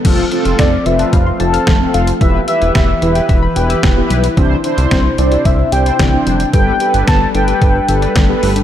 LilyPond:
<<
  \new Staff \with { instrumentName = "Soft synth lead" } { \time 4/4 \key f \lydian \tempo 4 = 111 r4 d''8 e''8 f''8 a''4 f''8 | e''8 e''2 r4. | r4 c''8 d''8 e''8 g''4. | g''4 a''8 g''2 r8 | }
  \new Staff \with { instrumentName = "Analog polysynth" } { \time 4/4 \key f \lydian <c' f' a'>16 r16 <c' f' a'>8. r16 <c' f' b'>8. r16 <c' f' a'>8 r16 <c' f' a'>8 r16 | <e' g' b'>16 r16 <e' g' b'>8. r16 <e' g' b'>8. r16 <e' g' b'>8 r16 <e' g' b'>8 r16 | <d' e' c''>16 r16 <d' e' c''>8. r16 <d' e' c''>8. r16 <d' e' c''>8 r16 <d' e' c''>8 r16 | <g' a' b'>16 r16 <g' a' b'>8. r16 <g' a' b'>8. r16 <g' a' b'>8 r16 <g' a' b'>8 r16 | }
  \new Staff \with { instrumentName = "Synth pluck" } { \time 4/4 \key f \lydian f16 c'16 r16 f'16 c'16 f''16 f'16 a''16 f''16 c'''16 a''16 f'''16 f16 c'16 a16 f'16 | e16 b16 r16 e'16 b16 e''16 e'16 g''16 e''16 b''16 g''16 e'''16 e16 b16 g16 e'16 | e16 c'16 r16 d'16 c'16 e'16 d'16 g'16 e'16 c''16 g'16 d''16 e16 c'16 g16 d'16 | g16 b16 r16 d'16 b16 g'16 d'16 a'16 g'16 b'16 a'16 d''16 g16 b16 a16 d'16 | }
  \new Staff \with { instrumentName = "Analog synth pad" } { \time 4/4 \key f \lydian <f a c'>1 | <e e' g' b'>1 | <c c' d'>1 | <g a' b'>1 | }
  \new Staff \with { instrumentName = "Analog synth bass" } { \clef bass \time 4/4 \key f \lydian f,,8 r16 f,,16 f,,8 f,,8 f,,8 f,,8 f,,8 f,,8 | e,,8 r16 e,,16 e,,8 e,,8 e,,8 e,,8 e,,8 b,,8 | c,8 r16 c,16 c,8 c,8 c,8 c,8 c,8 f,,8 | g,,8 r16 g,,16 g,,8 g,,8 g,,8 g,,8 g,,8 g,,8 | }
  \new DrumStaff \with { instrumentName = "Drums" } \drummode { \time 4/4 <cymc hh bd>8 hh16 hh16 <hh bd sn>8 hh16 hh16 <hh bd>8 hh16 hh16 <hh bd sn>8 hh16 hh16 | <hh bd>8 hh16 hh16 <hh bd sn>8 hh16 hh16 <hh bd>8 hh16 hh16 <hh bd sn>8 hh16 hh16 | <hh bd>8 hh16 hh16 <hh bd sn>8 hh16 hh16 <hh bd>8 hh16 hh16 <hh bd sn>8 hh16 hh16 | <hh bd>8 hh16 hh16 <hh bd sn>8 hh16 hh16 <hh bd>8 hh16 hh16 <hh bd sn>8 hho16 hh16 | }
>>